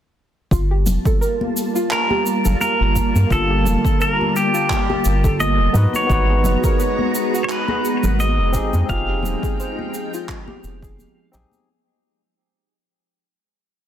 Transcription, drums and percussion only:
0.51 kick loud
0.51 cabasa soft
0.86 high conga medium
0.86 low conga medium
0.86 cabasa medium
1.05 kick loud
1.05 cabasa medium
1.22 cabasa soft
1.41 high conga medium
1.57 cabasa medium
1.76 cabasa medium
1.91 clap medium
1.91 cabasa soft
2.10 high conga medium
2.26 cabasa medium
2.45 low conga medium
2.45 cabasa medium
2.61 high conga medium
2.61 cabasa soft
2.96 kick medium
2.96 cabasa medium
3.16 high conga medium
3.16 cabasa medium
3.30 kick loud
3.30 cabasa soft
3.65 high conga medium
3.65 low conga medium
3.65 cabasa medium
3.85 kick medium
3.85 cabasa medium
4.01 cabasa soft
4.21 high conga medium
4.36 cabasa medium
4.55 cabasa medium
4.70 kick medium
4.70 clap medium
4.70 cabasa medium
4.90 high conga medium
5.05 cabasa medium
5.24 kick loud
5.24 cabasa medium
5.40 high conga medium
5.40 cabasa soft
5.74 low conga medium
5.74 cabasa medium
5.93 high conga medium
5.93 cabasa medium
6.10 kick loud
6.10 cabasa medium
6.44 high conga medium
6.44 low conga medium
6.44 cabasa medium
6.64 kick medium
6.64 cabasa medium
6.80 cabasa medium
6.98 high conga medium
7.15 cabasa medium
7.35 cabasa medium
7.49 clap medium
7.49 cabasa medium
7.68 high conga medium
7.85 cabasa medium
8.03 low conga medium
8.03 cabasa medium
8.19 high conga medium
8.19 cabasa soft
8.54 kick medium
8.54 cabasa medium
8.73 high conga medium
8.73 cabasa medium
8.89 kick loud
8.89 cabasa soft
9.23 high conga medium
9.23 low conga medium
9.23 cabasa medium
9.43 kick loud
9.43 cabasa medium
9.60 cabasa soft
9.79 high conga medium
9.94 cabasa medium
10.14 cabasa medium
10.29 kick medium
10.29 clap medium
10.29 cabasa soft
10.48 high conga loud
10.64 cabasa medium
10.83 kick loud
10.83 cabasa medium
10.98 high conga medium
10.98 cabasa soft
11.34 low conga medium
11.34 cabasa medium
11.52 high conga loud
11.52 cabasa medium

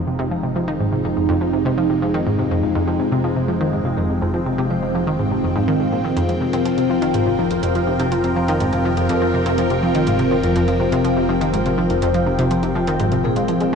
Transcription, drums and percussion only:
6.17 closed hi-hat medium
6.29 closed hi-hat soft
6.53 closed hi-hat medium
6.66 closed hi-hat medium
6.78 closed hi-hat soft
7.02 closed hi-hat soft
7.14 closed hi-hat medium
7.39 high conga medium
7.51 closed hi-hat medium
7.63 closed hi-hat medium
7.75 closed hi-hat soft
7.87 high conga medium
8.00 closed hi-hat soft
8.00 high conga medium
8.12 closed hi-hat medium
8.24 closed hi-hat soft
8.48 closed hi-hat soft
8.48 high conga medium
8.60 closed hi-hat medium
8.73 closed hi-hat soft
8.73 high conga medium
8.97 closed hi-hat soft
9.09 closed hi-hat medium
9.46 closed hi-hat soft
9.58 closed hi-hat medium
9.70 closed hi-hat soft
9.95 closed hi-hat medium
10.07 closed hi-hat medium
10.19 closed hi-hat soft
10.43 closed hi-hat soft
10.56 closed hi-hat medium
10.68 closed hi-hat soft
10.92 closed hi-hat medium
11.05 closed hi-hat medium
11.29 high conga medium
11.41 closed hi-hat soft
11.54 closed hi-hat medium
11.66 closed hi-hat soft
11.78 high conga medium
11.90 closed hi-hat soft
11.90 high conga medium
12.02 closed hi-hat medium
12.14 closed hi-hat soft
12.26 high conga medium
12.39 closed hi-hat soft
12.39 high conga medium
12.51 closed hi-hat medium
12.63 closed hi-hat soft
12.63 high conga medium
12.87 closed hi-hat soft
13.00 closed hi-hat medium
13.12 closed hi-hat soft
13.36 closed hi-hat soft
13.48 closed hi-hat medium
13.60 closed hi-hat soft

